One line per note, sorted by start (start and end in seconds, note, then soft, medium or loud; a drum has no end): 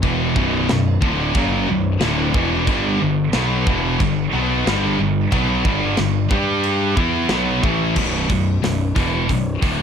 0.03 0.34 E1 loud
0.03 0.34 E2 medium
0.03 0.35 B2 medium
0.03 0.35 E3 loud
0.03 kick medium
0.03 china medium
0.35 0.67 B0 loud
0.35 0.68 B1 loud
0.35 0.68 F#2 loud
0.35 0.68 B2 loud
0.35 kick medium
0.69 1.01 B0 medium
0.69 0.96 B1 medium
0.69 0.96 F#2 medium
0.69 snare loud
0.69 china medium
1.01 1.33 D1 loud
1.01 1.34 D2 medium
1.01 1.34 A2 medium
1.01 1.35 D3 loud
1.01 kick loud
1.34 1.66 F#1 loud
1.34 1.67 F#2 medium
1.34 1.67 C#3 loud
1.34 1.68 F#3 loud
1.34 kick loud
1.34 china medium
1.68 2.00 B0 medium
1.68 1.95 B1 medium
1.68 1.95 F#2 medium
2.01 2.33 D1 loud
2.01 2.34 D2 loud
2.01 2.34 A2 medium
2.01 2.35 D3 loud
2.01 snare loud
2.01 china medium
2.34 2.65 E1 medium
2.34 2.67 E2 medium
2.34 2.67 B2 loud
2.34 2.68 E3 loud
2.34 kick loud
2.67 2.98 G1 loud
2.67 2.99 G2 medium
2.67 3.00 D3 loud
2.67 3.01 G3 loud
2.67 kick loud
2.67 china medium
3.00 3.32 G1 medium
3.00 3.27 G2 medium
3.00 3.27 D3 medium
3.33 3.65 B1 medium
3.33 3.66 B2 loud
3.33 3.67 F#3 loud
3.33 3.67 B3 loud
3.33 snare loud
3.33 china medium
3.67 3.98 E1 loud
3.67 3.99 E2 medium
3.67 4.00 B2 loud
3.67 4.00 E3 medium
3.67 kick loud
4.00 4.31 G1 medium
4.00 4.27 G2 medium
4.00 4.27 D3 medium
4.00 kick medium
4.00 china medium
4.33 4.65 B1 loud
4.33 4.65 B2 medium
4.33 4.66 F#3 medium
4.33 4.66 B3 loud
4.66 4.97 G1 loud
4.66 4.98 G2 medium
4.66 4.99 D3 loud
4.66 4.99 G3 loud
4.66 snare loud
4.66 china medium
5.00 5.30 G1 medium
5.00 5.26 G2 medium
5.00 5.27 D3 medium
5.32 5.63 B1 loud
5.32 5.64 B2 loud
5.32 5.65 F#3 loud
5.32 5.65 B3 medium
5.32 kick loud
5.32 china medium
5.65 5.96 G1 medium
5.65 5.98 G2 medium
5.65 5.98 D3 medium
5.65 5.98 G3 medium
5.65 kick medium
5.97 6.29 G1 medium
5.97 6.25 G2 medium
5.97 6.25 D3 medium
5.97 snare loud
5.97 china medium
6.31 6.94 G2 medium
6.31 6.96 G3 medium
6.31 6.97 D4 medium
6.31 6.97 G4 medium
6.31 kick loud
6.63 china medium
6.96 7.28 E2 medium
6.96 7.29 E3 medium
6.96 7.30 B3 medium
6.96 7.30 E4 medium
6.96 kick loud
7.29 7.61 B1 medium
7.29 7.63 B2 medium
7.29 7.63 F#3 medium
7.29 7.63 B3 medium
7.29 snare loud
7.29 china medium
7.63 7.95 A1 medium
7.63 7.97 A2 loud
7.63 7.97 E3 medium
7.63 7.97 A3 medium
7.63 kick loud
7.96 8.28 B0 medium
7.96 8.28 B1 medium
7.96 8.28 F#2 medium
7.96 8.30 B2 medium
7.96 kick medium
7.96 crash loud
8.29 8.61 B0 medium
8.29 8.56 B1 medium
8.29 8.56 F#2 medium
8.29 kick medium
8.29 open hi-hat medium
8.62 8.95 B0 medium
8.62 8.89 B1 medium
8.62 8.90 F#2 medium
8.62 snare loud
8.62 open hi-hat medium
8.95 9.27 E1 medium
8.95 9.27 E2 medium
8.95 9.28 B2 medium
8.95 9.28 E3 medium
8.95 kick loud
8.95 open hi-hat medium
9.27 9.60 B0 medium
9.27 9.55 B1 medium
9.27 9.55 F#2 medium
9.27 kick medium
9.27 open hi-hat medium
9.62 9.82 D1 medium
9.62 9.82 D2 medium
9.62 9.82 A2 medium
9.62 9.82 D3 medium
9.62 kick loud
9.62 open hi-hat medium